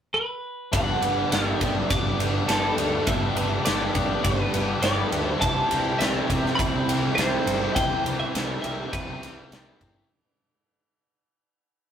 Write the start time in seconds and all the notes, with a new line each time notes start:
0.14 B4
0.71 G1 G2 D3 G3 B3 D4 G4 D5 F#5 B5, kick, ride
1.02 G1 G3 B3 D4 G4, ride
1.31 G1 G3 B3 D4 G4 E5, snare, ride
1.60 G1 G2 D3 G3 B3 D4 G4, kick, ride
1.90 G1 G2 D3 G3 B3 D4 G4 D5, kick, ride
2.19 G1 G3 B3 D4 G4, ride
2.48 G1 G2 D3 G3 B3 D4 G4 A4, snare, ride
2.77 D2 B3 D4 G4, ride
2.81 G3
3.07 G1 G2 D3 G3 B3 D4 G4 E5, kick, ride
3.36 G1 G3 B3 D4 G4, ride
3.65 G1 G3 B3 D4 G4 D5, snare, ride
3.95 G1 G2 D3 G3 B3 D4 G4, kick, ride
4.23 G1 G2 D3 G3 B3 D4 G4 B4, kick, ride
4.52 G1 G3 B3 D4 G4, ride
4.81 G1 G2 D3 G3 B3 D4 G4 D5, snare, ride
5.11 D2 G3 B3 D4 G4, ride
5.30 C5
5.40 C2 C3 E3 G3 C4 E4 G4 E5 A5, kick, ride
5.70 C2 C4 E4 G4, ride
5.99 C2 E3 G3 C4 E4 G4 E5, snare, ride
6.29 C2 C3 G3 C4 E4 G4, kick, ride
6.46 snare
6.55 C2 C3 E3 G3 C4 E4 G4 B5, kick
6.60 ride
6.87 C2 C4 E4 G4, snare, ride
7.15 C2 C3 G3 C4 E4 G4 C5, snare, ride
7.46 G1 C4 E4 G4, ride
7.75 C2 C3 E3 G3 C4 E4 G4 G5 A5, kick, ride
8.04 C2 C4 E4 G4, ride
8.20 E5
8.33 C2 E3 G3 C4 E4 G4, snare, ride
8.62 C2 C3 G3 C4 E4 G4 E5, ride
8.93 C2 C3 E3 G3 C4 E4 G4 B4, kick, ride
9.22 C2 C4 E4 G4, snare, ride
9.50 C2 C3 G3 C4 E4 G4, snare, ride
9.80 G1 C4 E4 G4, kick, ride